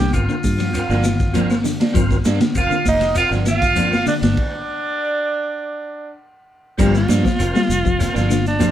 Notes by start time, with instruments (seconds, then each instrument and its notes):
Already playing: fingered electric bass C2, tenor saxophone G4, trumpet G5
0.00 clean electric guitar D3, snare
0.12 fingered electric bass G1, tonewheel organ C4 F4 A#4, tenor saxophone F4, trumpet F5, kick, ride bell, claves, shekere
0.29 clean electric guitar D3, muted clean electric guitar stroke, high conga, shekere
0.44 fingered electric bass G2, kick, open hi-hat, high conga, shekere
0.59 clean electric guitar F3, muted clean electric guitar stroke, snare, ride bell, shekere
0.73 tonewheel organ C4 F4 A#4, muted clean electric guitar stroke, ride bell, claves, shekere
0.89 fingered electric bass G1, clean electric guitar F3 A#3 D4, snare, shekere
1.04 clean electric guitar D#3, muted clean electric guitar stroke, snare, ride bell, claves, shekere
1.20 kick, snare, shekere
1.33 clean electric guitar F3 A#3 D4, tonewheel organ C4 F4 A#4, ride bell, high conga, shekere
1.50 muted clean electric guitar stroke, snare, claves, shekere
1.64 clean electric guitar D3, muted clean electric guitar stroke, snare, open hi-hat, high conga, low conga, shekere
1.80 clean electric guitar A#3 D4, snare, ride bell, high conga, shekere
1.93 fingered electric bass G1, clean electric guitar F3, tonewheel organ C4 F4 A#4, kick, ride bell, low conga, claves, shekere
2.10 muted clean electric guitar stroke, kick, snare, shekere
2.25 fingered electric bass G2, clean electric guitar A#3 D4, muted clean electric guitar stroke, snare, ride bell, high conga, shekere
2.39 clean electric guitar D3, muted clean electric guitar stroke, snare, ride bell, high conga, shekere
2.54 fingered electric bass F1, tonewheel organ C4 F4 A#4, tenor saxophone F4, kick, ride bell, claves, shekere
2.59 trumpet F5
2.70 clean electric guitar D3, muted clean electric guitar stroke, high conga, shekere
2.85 fingered electric bass F1, tenor saxophone D#4, trumpet D#5, kick, open hi-hat, high conga, shekere
3.01 muted clean electric guitar stroke, snare, ride bell, low conga, shekere
3.15 tonewheel organ C4 F4 A#4, tenor saxophone F4, trumpet F5, muted clean electric guitar stroke, ride bell, claves, shekere
3.31 fingered electric bass G1, clean electric guitar F3 A#3 D4, snare, shekere
3.45 clean electric guitar D#3, tenor saxophone F4, trumpet F5, muted clean electric guitar stroke, snare, ride bell, claves, shekere
3.62 kick, snare, ride bell, shekere
3.76 clean electric guitar F3 A#3 D4, tonewheel organ C4 F4 A#4, ride bell, high conga, shekere
3.91 muted clean electric guitar stroke, snare, claves, shekere
4.06 clean electric guitar D3, tenor saxophone D4, trumpet D5, muted clean electric guitar stroke, snare, open hi-hat, high conga, low conga, shekere
4.21 fingered electric bass G1, clean electric guitar A#3 D4, tenor saxophone D4, trumpet D5, snare, ride bell, shekere
4.37 kick, crash
6.78 fingered electric bass G1, clean electric guitar F3 G3 A#3 D4, tonewheel organ C4 F4 A#4, kick, crash, low conga, claves, shekere
6.82 alto saxophone G4
6.94 alto saxophone F4, muted clean electric guitar stroke, snare, closed hi-hat, shekere
7.08 fingered electric bass G2, clean electric guitar F3 A#3 D4, snare, closed hi-hat, high conga, shekere
7.23 clean electric guitar F3, muted clean electric guitar stroke, kick, snare, closed hi-hat, high conga, shekere
7.39 fingered electric bass F1, tonewheel organ C4 F4 A#4, closed hi-hat, claves, shekere
7.55 clean electric guitar G3, muted clean electric guitar stroke, snare, shekere
7.69 fingered electric bass F1, closed hi-hat, high conga, shekere
7.85 clean electric guitar F3, muted clean electric guitar stroke, kick, shekere
7.99 tonewheel organ C4 F4 A#4, muted clean electric guitar stroke, snare, closed hi-hat, claves, shekere
8.14 fingered electric bass G1, clean electric guitar F3 A#3 D4, alto saxophone F4, snare, closed hi-hat, shekere
8.29 clean electric guitar D3, muted clean electric guitar stroke, snare, closed hi-hat, claves, shekere
8.46 alto saxophone D4, snare, closed hi-hat, shekere
8.59 clean electric guitar F3 A#3 D4, tonewheel organ C4 F4 A#4, closed hi-hat, high conga, shekere